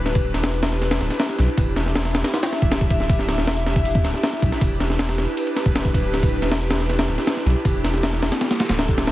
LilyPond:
<<
  \new Staff \with { instrumentName = "Analog synth pad" } { \time 4/4 \key e \minor \tempo 4 = 158 << { b'1 | e''1~ | e''1 | b'1~ |
b'1 | a'1 | } \\ { <d' e' g'>1~ | <d' e' g'>1~ | <d' e' g'>1~ | <d' e' g'>1~ |
<d' e' g'>1~ | <d' e' g'>1 | } >> }
  \new Staff \with { instrumentName = "Sub bass" } { \clef bass \time 4/4 \key e \minor d,,8. e,,4.~ e,,16 d,,16 r8. b,,16 r16 | e,,4.~ e,,16 r4 d,,4~ d,,16~ | d,,8. e,,4.~ e,,16 d,,16 r8. b,,16 r16 | e,,4.~ e,,16 r4 d,,4~ d,,16~ |
d,,8. e,,4.~ e,,16 d,,16 r8. b,,16 r16 | e,,4.~ e,,16 r4 d,,4~ d,,16 | }
  \new DrumStaff \with { instrumentName = "Drums" } \drummode { \time 4/4 <cymr sn>16 <bd cymr>8 <cymr sn>16 <cymr sn>8 <cymr sn>16 sn16 <cymr sn>16 <cymr sn>16 sn16 <cymr sn>16 <cymr sn>16 sn16 <cymr sn>8 | <bd cymr>8 <cymr sn>16 sn16 <cymr sn>16 sn16 <cymr sn>16 <cymr sn>16 <cymr sn>16 <cymr sn>16 <cymr sn>16 bd16 <cymr sn>16 bd16 <bd cymr>16 sn16 | <bd cymr>16 sn16 <cymr sn>16 sn16 <cymr sn>8 <cymr sn>16 bd16 cymr16 bd16 <cymr sn>16 sn16 <cymr sn>16 sn16 <bd cymr>16 sn16 | <bd cymr>8 <cymr sn>16 sn16 <cymr sn>16 sn16 <cymr sn>8 cymr16 cymr16 <cymr sn>16 bd16 <cymr sn>16 bd16 <bd cymr>8 |
<cymr sn>16 <bd cymr>8 <cymr sn>16 <cymr sn>8 <cymr sn>16 sn16 <cymr sn>16 <cymr sn>16 sn16 <cymr sn>16 <cymr sn>16 sn16 <cymr sn>8 | <bd cymr>8 <cymr sn>16 sn16 <cymr sn>16 sn16 <cymr sn>16 <cymr sn>16 <cymr sn>16 <cymr sn>16 <cymr sn>16 <cymr sn>16 <cymr sn>16 bd16 <cymr sn>16 <cymr sn>16 | }
>>